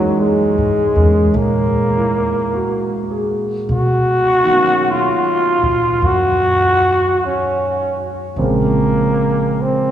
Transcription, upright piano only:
0, 0, Header, 1, 2, 480
1, 0, Start_track
1, 0, Tempo, 1171875
1, 1509, Time_signature, 4, 2, 24, 8
1, 4060, End_track
2, 0, Start_track
2, 0, Title_t, "Upright piano"
2, 0, Program_c, 0, 0
2, 0, Control_c, 0, 64, 127
2, 0, Note_on_c, 0, 52, 33
2, 0, Note_on_c, 0, 56, 35
2, 0, Note_on_c, 0, 58, 31
2, 0, Note_on_c, 0, 61, 30
2, 0, Note_on_c, 0, 63, 42
2, 385, Note_off_c, 0, 56, 0
2, 387, Note_off_c, 0, 58, 0
2, 392, Note_on_c, 0, 56, 29
2, 393, Note_on_c, 0, 58, 29
2, 399, Note_off_c, 0, 61, 0
2, 405, Note_on_c, 0, 61, 34
2, 805, Note_on_c, 0, 64, 30
2, 1040, Note_on_c, 0, 66, 38
2, 1140, Note_off_c, 0, 64, 0
2, 1273, Note_on_c, 0, 68, 42
2, 1418, Note_off_c, 0, 66, 0
2, 1510, Note_off_c, 0, 52, 0
2, 1510, Note_off_c, 0, 56, 0
2, 1511, Note_off_c, 0, 58, 0
2, 1514, Control_c, 0, 64, 0
2, 1516, Note_off_c, 0, 61, 0
2, 1522, Note_off_c, 0, 63, 0
2, 1581, Control_c, 0, 64, 127
2, 1615, Note_off_c, 0, 68, 0
2, 1818, Note_on_c, 0, 51, 36
2, 1831, Note_on_c, 0, 54, 33
2, 1838, Note_on_c, 0, 58, 33
2, 1852, Note_on_c, 0, 61, 36
2, 1866, Note_on_c, 0, 77, 42
2, 3424, Note_off_c, 0, 51, 0
2, 3428, Note_off_c, 0, 58, 0
2, 3430, Note_off_c, 0, 54, 0
2, 3430, Note_on_c, 0, 53, 39
2, 3430, Note_on_c, 0, 56, 30
2, 3433, Note_on_c, 0, 60, 34
2, 3434, Note_on_c, 0, 58, 39
2, 3435, Control_c, 0, 64, 0
2, 3437, Note_on_c, 0, 49, 43
2, 3441, Note_off_c, 0, 61, 0
2, 3447, Note_off_c, 0, 77, 0
2, 3514, Control_c, 0, 64, 127
2, 4060, Note_off_c, 0, 49, 0
2, 4060, Note_off_c, 0, 53, 0
2, 4060, Note_off_c, 0, 56, 0
2, 4060, Note_off_c, 0, 58, 0
2, 4060, Note_off_c, 0, 60, 0
2, 4060, End_track
0, 0, End_of_file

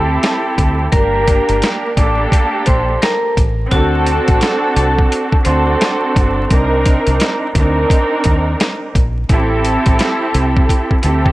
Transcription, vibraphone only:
0, 0, Header, 1, 2, 480
1, 0, Start_track
1, 0, Key_signature, -2, "minor"
1, 0, Tempo, 697674
1, 637, Time_signature, 4, 2, 24, 8
1, 7788, End_track
2, 0, Start_track
2, 0, Title_t, "Vibraphone"
2, 0, Program_c, 0, 11
2, 632, Note_on_c, 0, 70, 101
2, 636, Note_on_c, 0, 82, 76
2, 1087, Note_off_c, 0, 70, 0
2, 1089, Note_off_c, 0, 82, 0
2, 1357, Note_on_c, 0, 74, 74
2, 1363, Note_on_c, 0, 86, 61
2, 1490, Note_off_c, 0, 74, 0
2, 1494, Note_off_c, 0, 86, 0
2, 1830, Note_on_c, 0, 72, 85
2, 1835, Note_on_c, 0, 84, 65
2, 2049, Note_off_c, 0, 72, 0
2, 2052, Note_off_c, 0, 84, 0
2, 2075, Note_on_c, 0, 70, 94
2, 2081, Note_on_c, 0, 82, 66
2, 2292, Note_off_c, 0, 70, 0
2, 2295, Note_off_c, 0, 82, 0
2, 2558, Note_on_c, 0, 66, 104
2, 2564, Note_on_c, 0, 78, 78
2, 3010, Note_off_c, 0, 66, 0
2, 3013, Note_off_c, 0, 78, 0
2, 3281, Note_on_c, 0, 69, 77
2, 3287, Note_on_c, 0, 81, 65
2, 3413, Note_off_c, 0, 69, 0
2, 3416, Note_off_c, 0, 81, 0
2, 3750, Note_on_c, 0, 72, 78
2, 3755, Note_on_c, 0, 84, 62
2, 4446, Note_off_c, 0, 72, 0
2, 4448, Note_off_c, 0, 84, 0
2, 7788, End_track
0, 0, End_of_file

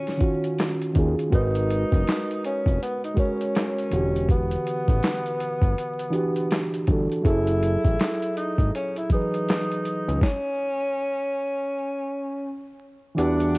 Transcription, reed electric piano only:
0, 0, Header, 1, 2, 480
1, 0, Start_track
1, 0, Tempo, 740741
1, 858, Time_signature, 4, 2, 24, 8
1, 8801, End_track
2, 0, Start_track
2, 0, Title_t, "Reed electric piano"
2, 0, Program_c, 0, 4
2, 0, Control_c, 0, 64, 127
2, 0, Note_on_c, 0, 51, 88
2, 0, Note_on_c, 0, 61, 94
2, 0, Note_on_c, 0, 65, 89
2, 0, Note_on_c, 0, 66, 108
2, 110, Note_off_c, 0, 51, 0
2, 110, Note_on_c, 0, 51, 96
2, 120, Note_off_c, 0, 61, 0
2, 120, Note_on_c, 0, 61, 79
2, 131, Note_off_c, 0, 65, 0
2, 131, Note_on_c, 0, 65, 82
2, 140, Note_off_c, 0, 66, 0
2, 140, Note_on_c, 0, 66, 100
2, 573, Note_off_c, 0, 51, 0
2, 578, Note_off_c, 0, 61, 0
2, 584, Note_off_c, 0, 65, 0
2, 588, Note_off_c, 0, 66, 0
2, 607, Note_on_c, 0, 51, 77
2, 618, Note_on_c, 0, 61, 72
2, 629, Note_on_c, 0, 65, 68
2, 638, Note_on_c, 0, 68, 86
2, 837, Note_off_c, 0, 51, 0
2, 842, Note_off_c, 0, 61, 0
2, 843, Note_on_c, 0, 56, 93
2, 848, Note_off_c, 0, 65, 0
2, 853, Note_off_c, 0, 68, 0
2, 853, Note_on_c, 0, 66, 86
2, 863, Note_on_c, 0, 70, 84
2, 867, Control_c, 0, 64, 0
2, 874, Note_on_c, 0, 71, 96
2, 963, Control_c, 0, 64, 127
2, 1748, Note_off_c, 0, 56, 0
2, 1753, Note_off_c, 0, 66, 0
2, 1758, Note_off_c, 0, 70, 0
2, 1764, Note_off_c, 0, 71, 0
2, 2036, Note_on_c, 0, 56, 77
2, 2048, Note_on_c, 0, 66, 72
2, 2060, Note_on_c, 0, 70, 65
2, 2070, Note_on_c, 0, 73, 82
2, 2527, Note_off_c, 0, 56, 0
2, 2530, Note_on_c, 0, 52, 70
2, 2533, Note_off_c, 0, 66, 0
2, 2539, Note_off_c, 0, 70, 0
2, 2541, Note_on_c, 0, 50, 64
2, 2544, Note_off_c, 0, 73, 0
2, 2546, Control_c, 0, 64, 0
2, 2550, Note_on_c, 0, 66, 67
2, 2562, Note_on_c, 0, 67, 78
2, 2679, Control_c, 0, 64, 127
2, 3432, Note_off_c, 0, 52, 0
2, 3437, Note_off_c, 0, 50, 0
2, 3442, Note_off_c, 0, 66, 0
2, 3448, Note_off_c, 0, 67, 0
2, 3952, Note_on_c, 0, 52, 91
2, 3961, Note_on_c, 0, 62, 81
2, 3972, Note_on_c, 0, 66, 83
2, 3984, Note_on_c, 0, 67, 87
2, 4414, Note_off_c, 0, 52, 0
2, 4418, Note_off_c, 0, 62, 0
2, 4424, Note_off_c, 0, 66, 0
2, 4430, Note_off_c, 0, 67, 0
2, 4454, Note_on_c, 0, 52, 77
2, 4465, Note_on_c, 0, 62, 76
2, 4476, Note_on_c, 0, 66, 68
2, 4487, Note_on_c, 0, 69, 82
2, 4678, Note_on_c, 0, 54, 91
2, 4681, Note_off_c, 0, 52, 0
2, 4686, Note_off_c, 0, 62, 0
2, 4688, Note_on_c, 0, 64, 85
2, 4692, Note_off_c, 0, 66, 0
2, 4697, Note_off_c, 0, 69, 0
2, 4701, Note_on_c, 0, 68, 97
2, 4705, Control_c, 0, 64, 0
2, 4711, Note_on_c, 0, 69, 104
2, 4802, Control_c, 0, 64, 127
2, 5586, Note_off_c, 0, 54, 0
2, 5591, Note_off_c, 0, 64, 0
2, 5597, Note_off_c, 0, 68, 0
2, 5602, Note_off_c, 0, 69, 0
2, 5893, Note_on_c, 0, 54, 76
2, 5902, Note_on_c, 0, 52, 68
2, 5916, Note_on_c, 0, 68, 64
2, 5924, Note_on_c, 0, 71, 80
2, 6569, Note_off_c, 0, 54, 0
2, 6573, Note_off_c, 0, 52, 0
2, 6580, Note_off_c, 0, 68, 0
2, 6584, Note_off_c, 0, 71, 0
2, 6628, Control_c, 0, 64, 0
2, 8520, Note_on_c, 0, 52, 92
2, 8533, Note_on_c, 0, 62, 84
2, 8541, Note_on_c, 0, 66, 83
2, 8551, Note_on_c, 0, 67, 101
2, 8666, Control_c, 0, 64, 127
2, 8801, Note_off_c, 0, 52, 0
2, 8801, Note_off_c, 0, 62, 0
2, 8801, Note_off_c, 0, 66, 0
2, 8801, Note_off_c, 0, 67, 0
2, 8801, End_track
0, 0, End_of_file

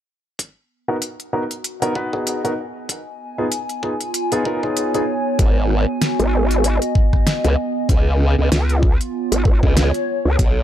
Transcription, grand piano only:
0, 0, Header, 1, 2, 480
1, 0, Start_track
1, 0, Tempo, 625000
1, 302, Time_signature, 4, 2, 24, 8
1, 8165, End_track
2, 0, Start_track
2, 0, Title_t, "Grand piano"
2, 0, Program_c, 0, 0
2, 677, Note_on_c, 0, 63, 67
2, 678, Note_on_c, 0, 59, 73
2, 678, Note_on_c, 0, 66, 69
2, 678, Note_on_c, 0, 70, 84
2, 729, Note_off_c, 0, 63, 0
2, 730, Note_off_c, 0, 59, 0
2, 730, Note_off_c, 0, 66, 0
2, 730, Note_off_c, 0, 70, 0
2, 1020, Note_on_c, 0, 63, 67
2, 1021, Note_on_c, 0, 59, 73
2, 1021, Note_on_c, 0, 66, 67
2, 1021, Note_on_c, 0, 70, 83
2, 1089, Note_off_c, 0, 63, 0
2, 1089, Note_off_c, 0, 70, 0
2, 1090, Note_off_c, 0, 59, 0
2, 1090, Note_off_c, 0, 66, 0
2, 1398, Note_on_c, 0, 59, 89
2, 1398, Note_on_c, 0, 63, 82
2, 1398, Note_on_c, 0, 66, 77
2, 1398, Note_on_c, 0, 70, 100
2, 1481, Note_off_c, 0, 59, 0
2, 1481, Note_off_c, 0, 63, 0
2, 1481, Note_off_c, 0, 66, 0
2, 1481, Note_off_c, 0, 70, 0
2, 1502, Note_on_c, 0, 59, 86
2, 1502, Note_on_c, 0, 71, 95
2, 1503, Note_on_c, 0, 63, 78
2, 1503, Note_on_c, 0, 66, 79
2, 1611, Note_off_c, 0, 59, 0
2, 1611, Note_off_c, 0, 66, 0
2, 1611, Note_off_c, 0, 71, 0
2, 1612, Note_off_c, 0, 63, 0
2, 1637, Note_on_c, 0, 59, 73
2, 1637, Note_on_c, 0, 63, 66
2, 1637, Note_on_c, 0, 66, 66
2, 1637, Note_on_c, 0, 68, 80
2, 1845, Note_off_c, 0, 59, 0
2, 1845, Note_off_c, 0, 63, 0
2, 1845, Note_off_c, 0, 66, 0
2, 1845, Note_off_c, 0, 68, 0
2, 1877, Note_on_c, 0, 59, 77
2, 1877, Note_on_c, 0, 63, 76
2, 1877, Note_on_c, 0, 70, 89
2, 1878, Note_on_c, 0, 66, 73
2, 1930, Note_off_c, 0, 59, 0
2, 1930, Note_off_c, 0, 63, 0
2, 1930, Note_off_c, 0, 66, 0
2, 1930, Note_off_c, 0, 70, 0
2, 2598, Note_on_c, 0, 59, 77
2, 2598, Note_on_c, 0, 63, 72
2, 2598, Note_on_c, 0, 65, 68
2, 2598, Note_on_c, 0, 68, 84
2, 2650, Note_off_c, 0, 59, 0
2, 2650, Note_off_c, 0, 63, 0
2, 2650, Note_off_c, 0, 65, 0
2, 2650, Note_off_c, 0, 68, 0
2, 2941, Note_on_c, 0, 59, 73
2, 2941, Note_on_c, 0, 63, 69
2, 2941, Note_on_c, 0, 65, 68
2, 2941, Note_on_c, 0, 68, 82
2, 3010, Note_off_c, 0, 59, 0
2, 3010, Note_off_c, 0, 63, 0
2, 3010, Note_off_c, 0, 65, 0
2, 3010, Note_off_c, 0, 68, 0
2, 3318, Note_on_c, 0, 59, 88
2, 3318, Note_on_c, 0, 63, 83
2, 3319, Note_on_c, 0, 65, 88
2, 3319, Note_on_c, 0, 68, 97
2, 3401, Note_off_c, 0, 59, 0
2, 3401, Note_off_c, 0, 63, 0
2, 3401, Note_off_c, 0, 65, 0
2, 3401, Note_off_c, 0, 68, 0
2, 3422, Note_on_c, 0, 59, 90
2, 3422, Note_on_c, 0, 63, 82
2, 3422, Note_on_c, 0, 65, 83
2, 3422, Note_on_c, 0, 70, 99
2, 3531, Note_off_c, 0, 59, 0
2, 3531, Note_off_c, 0, 63, 0
2, 3531, Note_off_c, 0, 65, 0
2, 3531, Note_off_c, 0, 70, 0
2, 3557, Note_on_c, 0, 63, 69
2, 3557, Note_on_c, 0, 65, 72
2, 3557, Note_on_c, 0, 68, 83
2, 3558, Note_on_c, 0, 59, 74
2, 3765, Note_off_c, 0, 59, 0
2, 3765, Note_off_c, 0, 63, 0
2, 3765, Note_off_c, 0, 65, 0
2, 3765, Note_off_c, 0, 68, 0
2, 3798, Note_on_c, 0, 63, 79
2, 3798, Note_on_c, 0, 68, 95
2, 3799, Note_on_c, 0, 59, 83
2, 3799, Note_on_c, 0, 65, 78
2, 3850, Note_off_c, 0, 59, 0
2, 3850, Note_off_c, 0, 63, 0
2, 3850, Note_off_c, 0, 65, 0
2, 3850, Note_off_c, 0, 68, 0
2, 8165, End_track
0, 0, End_of_file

